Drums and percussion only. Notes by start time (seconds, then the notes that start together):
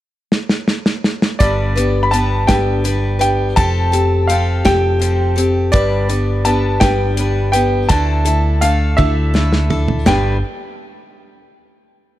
0.32 snare
0.49 snare
0.68 snare
0.86 snare
1.04 snare
1.22 snare
1.41 kick, closed hi-hat
1.77 closed hi-hat
2.14 closed hi-hat
2.49 kick, snare, closed hi-hat
2.85 closed hi-hat
3.21 closed hi-hat
3.57 kick, closed hi-hat
3.93 closed hi-hat
4.30 closed hi-hat
4.65 kick, snare, closed hi-hat
5.02 closed hi-hat
5.38 closed hi-hat
5.74 kick, closed hi-hat
6.10 closed hi-hat
6.45 closed hi-hat
6.81 kick, snare, closed hi-hat
7.17 closed hi-hat
7.53 closed hi-hat
7.89 kick, closed hi-hat
8.26 closed hi-hat
8.62 closed hi-hat
8.98 kick, high tom
9.35 snare
9.53 snare
9.70 floor tom
9.88 floor tom
10.06 snare, floor tom